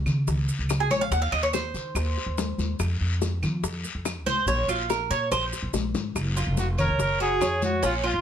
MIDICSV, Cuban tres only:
0, 0, Header, 1, 2, 480
1, 0, Start_track
1, 0, Tempo, 420168
1, 1275, Time_signature, 4, 2, 24, 8
1, 9380, End_track
2, 0, Start_track
2, 0, Title_t, "Cuban tres"
2, 0, Program_c, 0, 25
2, 917, Note_on_c, 0, 68, 80
2, 1032, Note_off_c, 0, 68, 0
2, 1038, Note_on_c, 0, 73, 91
2, 1153, Note_off_c, 0, 73, 0
2, 1157, Note_on_c, 0, 77, 93
2, 1272, Note_off_c, 0, 77, 0
2, 1276, Note_on_c, 0, 78, 108
2, 1387, Note_off_c, 0, 78, 0
2, 1391, Note_on_c, 0, 77, 93
2, 1510, Note_off_c, 0, 77, 0
2, 1510, Note_on_c, 0, 75, 92
2, 1629, Note_off_c, 0, 75, 0
2, 1634, Note_on_c, 0, 73, 81
2, 1749, Note_off_c, 0, 73, 0
2, 1753, Note_on_c, 0, 72, 81
2, 3151, Note_off_c, 0, 72, 0
2, 4871, Note_on_c, 0, 72, 100
2, 5107, Note_off_c, 0, 72, 0
2, 5115, Note_on_c, 0, 73, 104
2, 5349, Note_off_c, 0, 73, 0
2, 5356, Note_on_c, 0, 65, 71
2, 5589, Note_off_c, 0, 65, 0
2, 5597, Note_on_c, 0, 70, 80
2, 5829, Note_off_c, 0, 70, 0
2, 5833, Note_on_c, 0, 73, 113
2, 6067, Note_off_c, 0, 73, 0
2, 6073, Note_on_c, 0, 72, 97
2, 6217, Note_off_c, 0, 72, 0
2, 7273, Note_on_c, 0, 65, 67
2, 7737, Note_off_c, 0, 65, 0
2, 7751, Note_on_c, 0, 73, 70
2, 8216, Note_off_c, 0, 73, 0
2, 8228, Note_on_c, 0, 66, 80
2, 8461, Note_off_c, 0, 66, 0
2, 8470, Note_on_c, 0, 73, 69
2, 8934, Note_off_c, 0, 73, 0
2, 8941, Note_on_c, 0, 61, 78
2, 9177, Note_off_c, 0, 61, 0
2, 9180, Note_on_c, 0, 65, 74
2, 9380, Note_off_c, 0, 65, 0
2, 9380, End_track
0, 0, End_of_file